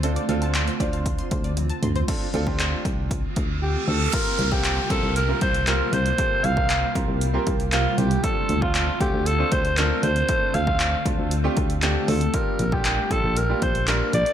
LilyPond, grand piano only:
\new Staff \with { instrumentName = "Grand piano" } { \time 4/4 \key d \minor \tempo 4 = 117 <c' d' f' a'>16 r16 <c' d' f' a'>8. r16 <c' d' f' c''>4. r4 | <c' d' f' a'>16 r16 <c' d' f' a'>16 <c' d' f' g'>4. r4. r16 | <bes c' f' g' bes'>8 r16 <bes c' f' g' bes'>8 r16 <bes c' f' g' bes'>8 r16 <bes c' f' g' bes'>8 r16 <bes c' f' g' bes'>8. r16 | <bes c' f' g' a'>8 r16 <bes c' f' g' bes'>8 r16 <bes c' f' g' bes'>8 r16 <bes c' f' g' bes'>8 r16 <bes c' f' g' bes'>8. r16 |
<a c' d' f' a'>8 r16 <a c' d' f' a'>8 r16 <a c' d' f' a'>8 r16 <a c' d' f' c''>8 r16 <a c' d' f' a'>8. r16 | <a c' d' f' a'>8 r16 <a c' d' f' a'>8 r16 <a c' d' f' a'>8 r16 <a c' d' f' g'>8 r16 <a c' d' f' a'>8. r16 | <g bes d' f' g'>8 r16 <g bes d' f' g'>8 r16 <g bes d' f' g'>8 r16 <g bes d' f' g'>8 r16 <g bes d' f' bes'>8. r16 | }